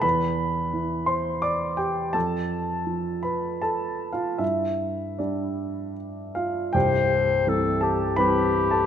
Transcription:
<<
  \new Staff \with { instrumentName = "Grand piano" } { \time 3/4 \key c \major \tempo 4 = 82 <b' b''>4. <c'' c'''>8 <d'' d'''>8 <g' g''>8 | <a' a''>4. <b' b''>8 \tuplet 3/2 { <a' a''>4 <f' f''>8 } | <e' e''>4 <d' d''>4 r8 <f' f''>8 | <g' g''>4. <a' a''>8 <b' b''>8. <a' a''>16 | }
  \new Staff \with { instrumentName = "Grand piano" } { \clef bass \time 3/4 \key c \major e,4 e2 | f,4 f2 | g,4 g2 | <c,, c,>4 <e g c'>4 <e g c'>4 | }
  \new Staff \with { instrumentName = "Clarinet" } { \time 3/4 \key c \major r2. | r2. | r2. | c''4 a'8 g'8 g'4 | }
>>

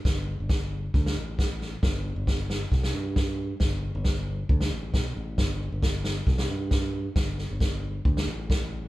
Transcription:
<<
  \new Staff \with { instrumentName = "Fingered electric bass" } { \clef bass \time 4/4 \key d \mixolydian \tempo 4 = 135 g,,8. g,,4~ g,,16 d,8 a,,4. | g,,8. g,,4~ g,,16 c,8 g,4. | g,,8. g,,4~ g,,16 d,8 a,,8 b,,8 a,,8 | g,,8. g,,4~ g,,16 c,8 g,4. |
g,,8. g,,4~ g,,16 d,8 a,,4. | }
  \new DrumStaff \with { instrumentName = "Drums" } \drummode { \time 4/4 <bd sn>4 <bd sn>4 <bd sn>16 sn8. <bd sn>8 sn8 | <bd sn>4 <bd sn>8 sn8 <bd sn>16 sn8. <bd sn>4 | <bd sn>4 <bd sn>4 bd16 sn8. <bd sn>4 | <bd sn>4 <bd sn>8 sn8 <bd sn>16 sn8. <bd sn>4 |
<bd sn>8 sn8 <bd sn>4 bd16 sn8. <bd sn>4 | }
>>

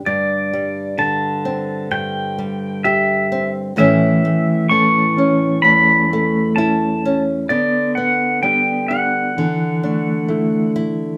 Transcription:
<<
  \new Staff \with { instrumentName = "Pedal steel guitar" } { \time 4/4 \key a \dorian \tempo 4 = 64 d''4 a''4 g''4 e''8. r16 | e''4 cis'''4 b''4 a''8. r16 | d''8 fis''8 g''8 fis''2 r8 | }
  \new Staff \with { instrumentName = "Clean electric guitar" } { \time 4/4 \key a \dorian r1 | e4 <a cis' a'>8 cis'8 <a cis' a'>8 a8 cis'4 | b4 <b d' g'>8 d'8 e8 a8 e'4 | }
  \new Staff \with { instrumentName = "Nylon-string guitar" } { \time 4/4 \key a \dorian << { r8 g4 c'4 g8 g'8 c'8 | <e a cis' e'>8 a4 cis'4 a8 e'8 cis'8 | r8 b4 g'8 r8 d'4 e'8 | } \\ { <g, d>4 d4 g,2 | a,4 e4 e,2 | d4 g4 d4 a4 | } >> }
>>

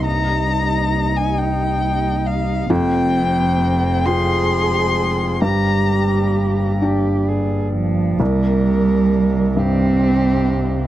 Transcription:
<<
  \new Staff \with { instrumentName = "Violin" } { \time 6/8 \key c \minor \tempo 4. = 44 bes''4~ bes''16 aes''16 g''4 f''8 | g''4. c'''4. | bes''4. r4. | bes'4. g'4. | }
  \new Staff \with { instrumentName = "Ambient pad" } { \time 6/8 \key c \minor << { <bes ees''>2. | <aes c''>2. | <bes d''>2. | <bes ees''>2. | } \\ { g'2. | g''2.~ | g''2. | g'2. | } >> }
  \new Staff \with { instrumentName = "Cello" } { \time 6/8 \key c \minor ees'2. | c'4. aes'4. | g'4. g'8 aes'8 f8 | g4. c'4. | }
  \new Staff \with { instrumentName = "Felt piano" } { \clef bass \time 6/8 \key c \minor g,2. | f,4. <f' g''>4. | g,4. <d' g''>4. | c,4. g,4. | }
  \new Staff \with { instrumentName = "Double bass" } { \clef bass \time 6/8 \key c \minor c,2. | f,,2. | g,,2. | c,2. | }
>>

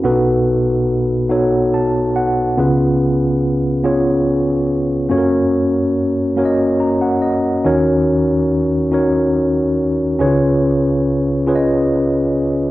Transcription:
<<
  \new Staff \with { instrumentName = "Tine electric piano" } { \time 6/8 \key cis \dorian \tempo 4. = 47 << { r2 a''8 fis''8 | r2. | r2 ais''16 fis''16 dis''8 | r2. |
r2. | } \\ { <b d' dis' fis' a' b'>4 r8 <b dis' fis' a' cis''>4 r8 | <b cis' eis' gis' b'>4 r8 <b cis' eis' gis' cis''>4 r8 | <ais cis' fis' a' ais' cis''>4 r8 <ais cis' fis' ais' cis'' dis''>4 r8 | <cis' dis' fis' ais' cis''>4 r8 <cis' dis' fis' ais' cis''>4 r8 |
<cis' dis' eis' gis' b' cis''>4 r8 <cis' eis' gis' b' cis'' dis''>4 r8 | } >> }
  \new Staff \with { instrumentName = "Tine electric piano" } { \clef bass \time 6/8 \key cis \dorian <b,, b,>2. | <cis, cis>2. | fis,2. | <dis, dis>2. |
<cis, cis>2. | }
>>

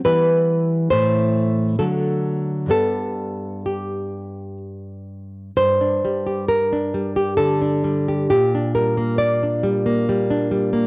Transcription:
\new Staff \with { instrumentName = "Nylon-string guitar" } { \time 3/4 \key g \major \tempo 4 = 66 << { b'4 c''4 a'4 | a'4 g'4 r4 | \key g \minor c''4 bes'4 a'4 | g'8 bes'8 d''4. r8 | } \\ { <e g b>4 <a, e a>4 <d fis a>4 | <g, g b>2. | g,16 d'16 g16 g'8 d'16 g16 g'16 d16 d'16 g16 g'16 | bes,16 d'16 g16 bes8 d'16 g16 bes16 g16 d'16 g16 bes16 | } >> }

